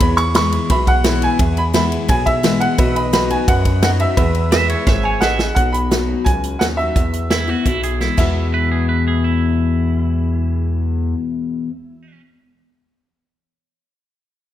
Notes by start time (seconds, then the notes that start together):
0.00 E2 G#4 B4 C#5 B5, kick, ride
0.17 C#6, ride
0.35 E3 G#3 B3 E4 G#4 B4 E5 C#6, snare, ride
0.52 ride
0.70 B1 B2 G#4 B4 E5 B5, kick, ride
0.87 F#5, kick, ride
1.04 E3 G#3 B3 E4 G#4 B4 C#5, snare, ride
1.22 G#5, ride
1.39 E2 G#4 B4 E5, kick, ride
1.57 B5, ride
1.73 E3 G#3 B3 E4 G#4 B4 E5 B5, snare, ride
1.92 ride
2.08 B1 B2 G#4 B4 F#5 G#5, kick, ride
2.26 E5, kick, ride
2.43 E3 G#3 B3 E4 G#4 B4 D#5, snare, ride
2.60 F#5, ride
2.78 B1 B2 F#4 B4 D#5 E5, kick, ride
2.96 B5, ride
3.00 D#5
3.13 F#3 B3 D#4 F#4 B4 D#5 B5, snare, ride
3.30 D#4 F#4 G#5, ride
3.48 F#2 F#4 B4 F#5, kick, ride
3.65 kick, ride
3.82 F#3 B3 D#4 F#4 B4 D#5 F#5, snare, ride
4.00 E5, ride
4.17 E2 G#4 B4 E5, kick, ride
4.35 ride
4.52 E3 G#3 B3 E4 G#4 B4 E5, snare, ride
4.69 C#5, ride
4.87 G#1 G#2 G#4 B4 C#5 E5, kick, snare
5.03 C#5 G#5
5.20 A1 A2 G#4 B4 D#5 E5 F#5, snare
5.39 snare
5.55 B1 B2 F#5, kick, closed hi-hat
5.72 B5, closed hi-hat
5.91 F#3 B3 D#4 F#4, snare, closed hi-hat
6.24 C#2 F#2 G#5, kick, closed hi-hat
6.43 closed hi-hat
6.59 D#2 F#3 B3 D#4 F#4 F#5, snare, closed hi-hat
6.77 D#4 F#4 E5
6.96 E2, kick, closed hi-hat
7.13 closed hi-hat
7.31 E3 G#3 B3 E4, snare, closed hi-hat
7.48 B3 E4 F#4
7.65 B1 B2 E4, kick, closed hi-hat
7.83 G#4, closed hi-hat
8.01 E3 G#3 B3 E4, snare
8.17 E2 B2 E3 G#3 B3 E4 E5, kick, crash
8.54 B4
8.72 G#4
8.89 B4
9.08 G#4
9.24 E4